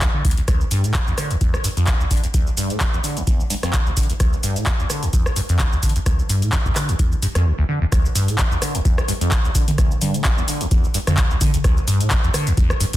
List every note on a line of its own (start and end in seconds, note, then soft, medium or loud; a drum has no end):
0.01 0.08 D2 medium
0.01 kick loud
0.01 clap loud
0.01 closed hi-hat medium
0.14 0.23 D3 medium
0.25 0.35 D2 medium
0.25 kick medium
0.25 open hi-hat loud
0.31 closed hi-hat medium
0.37 0.41 D2 medium
0.37 closed hi-hat soft
0.48 0.62 D2 medium
0.48 kick loud
0.48 cross-stick medium
0.48 closed hi-hat medium
0.48 shaker soft
0.61 0.64 C2 medium
0.61 shaker soft
0.71 0.85 G2 medium
0.71 open hi-hat loud
0.71 shaker medium
0.84 0.93 A2 loud
0.84 closed hi-hat soft
0.84 shaker soft
0.94 kick loud
0.94 clap loud
0.94 closed hi-hat soft
0.94 shaker soft
1.07 1.13 E2 medium
1.07 shaker soft
1.18 1.32 D3 medium
1.18 cross-stick medium
1.18 open hi-hat medium
1.18 shaker medium
1.30 1.36 C2 loud
1.30 closed hi-hat medium
1.30 shaker soft
1.41 1.55 E2 medium
1.41 kick loud
1.41 closed hi-hat medium
1.41 shaker soft
1.54 1.57 C2 medium
1.54 cross-stick medium
1.54 shaker soft
1.64 1.68 G2 loud
1.64 open hi-hat loud
1.64 shaker medium
1.77 1.89 F2 loud
1.77 closed hi-hat soft
1.77 shaker soft
1.87 1.95 D2 medium
1.87 kick loud
1.87 clap loud
1.87 closed hi-hat medium
1.87 shaker soft
2.00 2.06 D2 medium
2.00 shaker soft
2.11 2.21 D3 medium
2.11 kick medium
2.11 open hi-hat medium
2.11 shaker medium
2.17 closed hi-hat medium
2.24 2.27 E2 medium
2.24 closed hi-hat medium
2.24 shaker soft
2.34 2.48 D2 medium
2.34 kick loud
2.34 closed hi-hat medium
2.34 shaker soft
2.47 2.50 C2 medium
2.47 shaker soft
2.57 2.72 G2 loud
2.57 open hi-hat loud
2.57 shaker medium
2.70 2.79 A2 loud
2.70 closed hi-hat medium
2.70 shaker soft
2.80 2.85 F2 loud
2.80 kick loud
2.80 clap loud
2.80 closed hi-hat soft
2.80 shaker soft
2.93 2.99 E2 medium
2.93 shaker soft
3.04 3.18 D3 medium
3.04 open hi-hat medium
3.04 shaker medium
3.17 3.22 C2 loud
3.17 closed hi-hat soft
3.17 shaker soft
3.27 3.41 E2 medium
3.27 kick loud
3.27 closed hi-hat medium
3.27 shaker soft
3.40 3.43 C2 medium
3.40 shaker soft
3.50 3.55 G2 loud
3.50 open hi-hat loud
3.50 shaker medium
3.63 3.75 F2 loud
3.63 cross-stick medium
3.63 closed hi-hat soft
3.63 shaker soft
3.73 3.81 D2 medium
3.73 kick loud
3.73 clap loud
3.73 closed hi-hat medium
3.73 shaker medium
3.86 3.92 D2 medium
3.86 shaker soft
3.97 4.07 D3 medium
3.97 kick medium
3.97 open hi-hat medium
3.97 shaker medium
4.03 closed hi-hat medium
4.10 4.13 E2 medium
4.10 closed hi-hat medium
4.10 shaker soft
4.20 4.34 D2 medium
4.20 kick loud
4.20 cross-stick medium
4.20 closed hi-hat medium
4.20 shaker medium
4.33 4.36 C2 medium
4.33 shaker soft
4.43 4.58 G2 loud
4.43 open hi-hat loud
4.43 shaker medium
4.56 4.65 A2 loud
4.56 closed hi-hat medium
4.56 shaker soft
4.66 4.71 F2 loud
4.66 kick loud
4.66 clap loud
4.66 closed hi-hat soft
4.66 shaker soft
4.79 4.85 E2 medium
4.79 shaker soft
4.90 5.04 D3 medium
4.90 cross-stick medium
4.90 open hi-hat medium
4.90 shaker medium
5.03 5.08 C2 loud
5.03 closed hi-hat medium
5.03 shaker soft
5.13 5.27 E2 medium
5.13 kick loud
5.13 closed hi-hat medium
5.13 shaker soft
5.26 5.29 C2 medium
5.26 cross-stick medium
5.26 shaker soft
5.36 5.41 G2 loud
5.36 open hi-hat loud
5.36 shaker medium
5.49 5.61 F2 loud
5.49 closed hi-hat medium
5.49 shaker soft
5.59 5.67 D2 medium
5.59 kick loud
5.59 clap loud
5.59 closed hi-hat medium
5.59 shaker soft
5.72 5.78 D2 medium
5.72 shaker soft
5.83 5.93 D3 medium
5.83 kick medium
5.83 open hi-hat medium
5.83 shaker medium
5.89 closed hi-hat medium
5.96 5.99 E2 medium
5.96 closed hi-hat medium
5.96 shaker soft
6.06 6.20 D2 medium
6.06 kick loud
6.06 cross-stick medium
6.06 closed hi-hat medium
6.06 shaker soft
6.19 6.22 C2 medium
6.19 shaker soft
6.29 6.44 G2 loud
6.29 open hi-hat loud
6.29 shaker medium
6.42 6.51 A2 loud
6.42 closed hi-hat medium
6.42 shaker soft
6.52 6.57 F2 loud
6.52 kick loud
6.52 clap loud
6.52 closed hi-hat soft
6.52 shaker soft
6.65 6.71 E2 medium
6.65 kick medium
6.65 shaker soft
6.76 6.90 D3 medium
6.76 cross-stick medium
6.76 clap medium
6.76 open hi-hat medium
6.76 shaker medium
6.89 6.94 C2 loud
6.89 closed hi-hat medium
6.89 shaker soft
6.99 7.13 E2 medium
6.99 kick loud
6.99 closed hi-hat medium
6.99 shaker soft
7.12 7.15 C2 medium
7.12 shaker soft
7.22 7.27 G2 loud
7.22 open hi-hat loud
7.22 shaker medium
7.35 7.47 F2 loud
7.35 cross-stick medium
7.35 closed hi-hat medium
7.35 shaker soft
7.45 7.53 D2 medium
7.58 7.64 D2 medium
7.69 7.79 D3 medium
7.82 7.85 E2 medium
7.92 8.06 D2 medium
7.92 kick loud
7.92 cross-stick medium
7.92 closed hi-hat medium
7.92 shaker soft
8.05 8.08 C2 medium
8.05 shaker soft
8.15 8.30 G2 loud
8.15 open hi-hat loud
8.15 shaker medium
8.28 8.37 A2 loud
8.28 closed hi-hat medium
8.28 shaker soft
8.38 8.43 F2 loud
8.38 kick loud
8.38 clap loud
8.38 closed hi-hat medium
8.38 shaker soft
8.52 8.57 E2 medium
8.52 shaker soft
8.62 8.76 D3 medium
8.62 cross-stick medium
8.62 open hi-hat medium
8.62 shaker medium
8.75 8.80 C2 loud
8.75 closed hi-hat medium
8.75 shaker soft
8.85 8.99 E2 medium
8.85 kick loud
8.85 closed hi-hat medium
8.85 shaker soft
8.98 9.01 C2 medium
8.98 cross-stick medium
8.98 shaker soft
9.08 9.13 G2 loud
9.08 open hi-hat loud
9.08 shaker medium
9.21 9.33 F2 loud
9.21 closed hi-hat medium
9.21 shaker soft
9.31 9.39 D2 medium
9.31 kick loud
9.31 clap loud
9.31 closed hi-hat medium
9.31 shaker soft
9.44 9.50 D2 medium
9.44 shaker soft
9.55 9.65 D3 medium
9.55 kick medium
9.55 open hi-hat loud
9.55 shaker medium
9.68 9.71 E2 medium
9.68 closed hi-hat medium
9.68 mid tom medium
9.68 shaker soft
9.78 9.92 D2 medium
9.78 kick loud
9.78 cross-stick medium
9.78 closed hi-hat medium
9.78 shaker soft
9.91 9.94 C2 medium
9.91 shaker soft
10.01 10.16 G2 loud
10.01 open hi-hat loud
10.01 mid tom medium
10.01 shaker medium
10.14 10.23 A2 loud
10.14 closed hi-hat medium
10.14 shaker soft
10.24 10.29 F2 loud
10.24 kick loud
10.24 clap loud
10.24 closed hi-hat medium
10.24 shaker soft
10.37 10.43 E2 medium
10.37 shaker soft
10.48 10.62 D3 medium
10.48 open hi-hat loud
10.48 shaker medium
10.61 10.67 C2 loud
10.61 closed hi-hat medium
10.61 shaker soft
10.71 10.85 E2 medium
10.71 kick loud
10.71 closed hi-hat medium
10.71 shaker soft
10.84 10.87 C2 medium
10.84 shaker soft
10.94 10.99 G2 loud
10.94 open hi-hat loud
10.94 shaker medium
11.07 11.19 F2 loud
11.07 cross-stick medium
11.07 closed hi-hat medium
11.07 mid tom loud
11.07 shaker soft
11.17 11.25 D2 medium
11.17 kick loud
11.17 clap loud
11.17 closed hi-hat medium
11.17 shaker soft
11.30 11.36 D2 medium
11.30 shaker soft
11.41 11.52 D3 medium
11.41 kick medium
11.41 open hi-hat loud
11.41 mid tom loud
11.41 shaker medium
11.54 11.57 E2 medium
11.54 closed hi-hat medium
11.54 shaker soft
11.64 11.79 D2 medium
11.64 kick loud
11.64 cross-stick medium
11.64 closed hi-hat medium
11.64 shaker soft
11.77 11.81 C2 medium
11.77 shaker soft
11.87 12.02 G2 loud
11.87 open hi-hat loud
11.87 shaker medium
12.00 12.09 A2 loud
12.00 closed hi-hat medium
12.00 shaker soft
12.10 12.15 F2 loud
12.10 kick loud
12.10 clap loud
12.10 closed hi-hat medium
12.10 shaker soft
12.24 12.29 E2 medium
12.24 shaker soft
12.34 12.48 D3 medium
12.34 cross-stick medium
12.34 open hi-hat loud
12.34 shaker medium
12.47 12.53 C2 loud
12.47 closed hi-hat medium
12.47 shaker soft
12.57 12.72 E2 medium
12.57 kick loud
12.57 closed hi-hat soft
12.57 shaker soft
12.70 12.74 C2 medium
12.70 cross-stick medium
12.70 shaker soft
12.80 12.85 G2 loud
12.80 open hi-hat loud
12.80 shaker medium
12.93 12.97 F2 loud
12.93 closed hi-hat medium
12.93 shaker soft